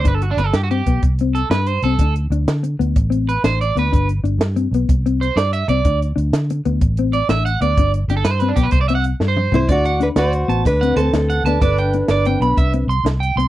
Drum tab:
HH |xxxxxxxxxxxx|xxxxxxxxxxxx|xxxxxxxxxxxx|xxxxxxxxxxxx|
SD |--oo-----o--|---o-----o--|---o-----o--|---o-----o--|
T2 |------------|------------|------------|------------|
FT |------------|------------|------------|------------|
BD |o----oo-----|o-----o-----|o-----o-----|o-----o-----|

HH |xxxxxxxxx---|xxxxxxxxxxxx|xxxxxxxxxxxx|
SD |---o-----o--|---o-----o--|---o-----o--|
T2 |----------o-|------------|------------|
FT |-----------o|------------|------------|
BD |o----oo-----|o-----o-----|o-----o-----|